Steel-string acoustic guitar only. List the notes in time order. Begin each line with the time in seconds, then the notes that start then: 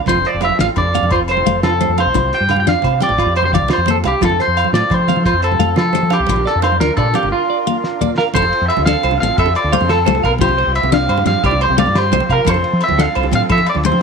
0.09 F4
0.60 D4
0.95 C4
1.46 A3
1.81 A3
2.15 F4
2.67 D4
3.02 C4
3.55 F3
3.88 A#3
4.23 F4
4.75 D4
5.09 C4
5.60 A3
5.95 A3
6.29 F4
6.81 D4
7.15 C4
7.67 A#3
8.01 A#3
8.36 F4
8.87 D4
9.23 C4
9.73 A3
10.08 A3
10.41 F4
10.92 D4
11.26 C4
11.78 A3
12.13 A3
12.47 F4
12.99 D4
13.33 C4
13.85 A3